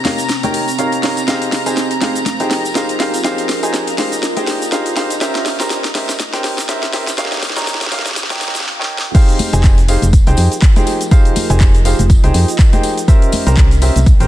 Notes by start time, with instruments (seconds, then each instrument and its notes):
Already playing: ambient pad C4 G5, violin section A#5, riser
0.05 upright piano D#4 G4 A#4 C#5 F5, snare, open hi-hat, high conga
0.18 fm bass D#1, ambient pad F5, tambourine, shaker
0.29 snare, closed hi-hat, tambourine, shaker
0.43 fm bass A#1, upright piano D#4 G4 A#4 C#5 G5, closed hi-hat, tambourine, high conga, shaker
0.54 fm bass D#2, open hi-hat
0.68 tambourine, shaker
0.79 upright piano D#4 G4 A#4 C#5 F5, closed hi-hat, tambourine, shaker
0.92 closed hi-hat, tambourine, shaker
1.03 upright piano D#4 G4 A#4 C#5 F5, snare, open hi-hat
1.17 closed hi-hat, tambourine, shaker
1.28 upright piano D#4 G4 G#4 C5 F5, ambient pad F4, snare, closed hi-hat, tambourine, shaker
1.42 ambient pad A#4, closed hi-hat, tambourine, shaker
1.52 snare, open hi-hat
1.66 fm bass F1, upright piano D#4 G4 G#4 C5 G#5, closed hi-hat, tambourine, shaker
1.77 snare, closed hi-hat, tambourine, shaker
1.91 ambient pad D#5, closed hi-hat, tambourine, shaker
2.01 upright piano D#4 G4 G#4 C5 F5, snare, open hi-hat, high conga
2.15 fm bass F1, tambourine, shaker
2.26 snare, closed hi-hat, tambourine, high conga, shaker
2.40 fm bass C2, upright piano D#4 G4 G#4 C5 G5, closed hi-hat, tambourine, shaker
2.51 fm bass F2, snare, open hi-hat
2.65 tambourine, shaker
2.75 upright piano D#4 G4 G#4 C5 F5, snare, closed hi-hat, tambourine, shaker
2.89 closed hi-hat, tambourine, shaker
3.00 upright piano D#4 G4 G#4 C5 F5, snare, open hi-hat
3.14 closed hi-hat, tambourine, shaker
3.24 upright piano D#4 G4 G#4 C5 F5, snare, closed hi-hat, tambourine, shaker
3.38 closed hi-hat, tambourine, shaker
3.49 snare, open hi-hat
3.63 fm bass F1, upright piano D#4 G4 G#4 C5 G#5, closed hi-hat, tambourine, shaker
3.74 snare, closed hi-hat, tambourine, shaker
3.87 closed hi-hat, tambourine, shaker
3.98 upright piano D#4 G4 G#4 C5 F5, snare, open hi-hat, high conga
4.12 fm bass F1, tambourine, shaker
4.23 snare, closed hi-hat, tambourine, shaker
4.37 fm bass C2, upright piano D#4 G4 G#4 C5 G5, closed hi-hat, tambourine, high conga, shaker
4.47 fm bass F2, snare, open hi-hat
4.62 tambourine, shaker
4.72 upright piano D#4 G4 G#4 C5 F5, snare, closed hi-hat, tambourine, shaker
4.86 closed hi-hat, tambourine, shaker
4.96 upright piano D#4 G4 G#4 C5 F5, snare, open hi-hat
5.10 closed hi-hat, tambourine, shaker
5.21 upright piano C#4 G4 A#4 C5 E5, ambient pad G4, snare, closed hi-hat, tambourine, shaker
5.35 snare, closed hi-hat, tambourine, shaker
5.46 snare, open hi-hat
5.60 fm bass C2, upright piano C#4 G4 A#4 C5 A#5, snare, closed hi-hat, tambourine, shaker
5.70 snare, closed hi-hat, tambourine, shaker
5.75 ambient pad C4 E5
5.84 snare, closed hi-hat, tambourine, shaker
5.95 upright piano C#4 G4 A#4 C5 E5, snare, open hi-hat, high conga
6.09 fm bass C2, snare, tambourine, shaker
6.20 snare, closed hi-hat, tambourine, high conga, shaker
6.33 fm bass G1, upright piano C#4 G4 A#4 C5 G5, snare, closed hi-hat, tambourine, shaker
6.44 snare, open hi-hat
6.58 snare, tambourine, shaker
6.68 upright piano C#4 G4 A#4 C5 E5, snare, closed hi-hat, tambourine, shaker
6.83 snare, closed hi-hat, tambourine, shaker
6.93 upright piano C#4 G4 A#4 C5 E5, snare, open hi-hat
7.07 snare, closed hi-hat, tambourine, shaker
7.18 upright piano D#4 G4 A#4 C#5 F5, snare, closed hi-hat, tambourine, shaker
7.25 snare
7.32 snare, closed hi-hat, tambourine, shaker
7.37 snare
7.43 snare, open hi-hat, high conga
7.50 snare
7.56 upright piano D#4 G4 A#4 C#5 A#5, snare, closed hi-hat, tambourine, shaker
7.62 snare
7.67 snare, closed hi-hat, tambourine, shaker
7.74 snare
7.81 snare, closed hi-hat, tambourine, shaker
7.86 snare
7.92 upright piano D#4 G4 A#4 C#5 F5, snare, open hi-hat, high conga
7.99 snare
8.05 snare, closed hi-hat, tambourine, shaker
8.11 snare
8.16 snare, closed hi-hat, tambourine, shaker
8.23 snare
8.30 upright piano D#4 G4 A#4 C#5 G5, snare, closed hi-hat, tambourine, high conga, shaker
8.36 snare
8.41 snare, open hi-hat
8.48 snare
8.55 snare, tambourine, shaker
8.60 snare
8.65 snare
8.79 upright piano D#4 G4 A#4 C#5 G5, snare
8.98 snare
9.15 upright piano D#4 G4 G#4 C5 F5, ambient pad F4, kick, closed hi-hat, crash, tambourine, shaker
9.29 closed hi-hat, shaker
9.39 open hi-hat, tambourine, high conga
9.53 fm bass F1, upright piano D#4 G4 G#4 C5 G#5, closed hi-hat, tambourine, shaker
9.64 ambient pad A#4, kick, clap, closed hi-hat, tambourine, shaker
9.78 closed hi-hat, tambourine, shaker
9.88 upright piano D#4 G4 G#4 C5 F5, open hi-hat, tambourine
10.02 fm bass F1, closed hi-hat, tambourine, high conga, shaker
10.13 kick, closed hi-hat, tambourine, shaker
10.27 fm bass C2, upright piano D#4 G4 G#4 C5 G5, closed hi-hat, tambourine, shaker
10.31 ambient pad D#5
10.37 fm bass F2, open hi-hat, tambourine
10.52 closed hi-hat, tambourine, shaker
10.62 kick, clap, closed hi-hat, tambourine, shaker
10.76 upright piano D#4 G4 G#4 C5 G5, closed hi-hat, tambourine, high conga, shaker
10.87 open hi-hat, tambourine
11.01 closed hi-hat, tambourine, shaker
11.11 upright piano D#4 G4 G#4 C5 F5, kick, closed hi-hat, tambourine, shaker
11.25 closed hi-hat, shaker
11.36 open hi-hat, tambourine, high conga
11.50 fm bass F1, upright piano D#4 G4 G#4 C5 G#5, closed hi-hat, tambourine, shaker
11.60 kick, clap, closed hi-hat, tambourine, shaker
11.74 closed hi-hat, tambourine, shaker
11.85 upright piano D#4 G4 G#4 C5 F5, open hi-hat, tambourine
11.99 fm bass F1, closed hi-hat, tambourine, high conga, shaker
12.10 kick, closed hi-hat, tambourine, shaker
12.24 fm bass C2, upright piano D#4 G4 G#4 C5 G5, closed hi-hat, tambourine, shaker
12.34 fm bass F2, open hi-hat, tambourine
12.48 closed hi-hat, tambourine, shaker
12.59 kick, clap, closed hi-hat, tambourine, shaker
12.73 upright piano D#4 G4 G#4 C5 G5, closed hi-hat, tambourine, high conga, shaker
12.83 open hi-hat, tambourine
12.97 closed hi-hat, tambourine, shaker
13.08 upright piano C#4 G4 A#4 C5 E5, ambient pad G5, kick, closed hi-hat, tambourine, shaker
13.22 closed hi-hat, shaker
13.32 open hi-hat, tambourine, high conga
13.46 fm bass C2, ambient pad C4, upright piano C#4 G4 A#4 C5 A#5, closed hi-hat, tambourine, shaker
13.57 kick, clap, closed hi-hat, tambourine, shaker
13.71 ambient pad E5, closed hi-hat, tambourine, shaker
13.82 upright piano C#4 G4 A#4 C5 E5, open hi-hat, tambourine
13.96 fm bass C2, closed hi-hat, tambourine, high conga, shaker
14.06 kick, closed hi-hat, tambourine, shaker
14.20 fm bass G1, upright piano C#4 G4 A#4 C5 G5, closed hi-hat, tambourine, shaker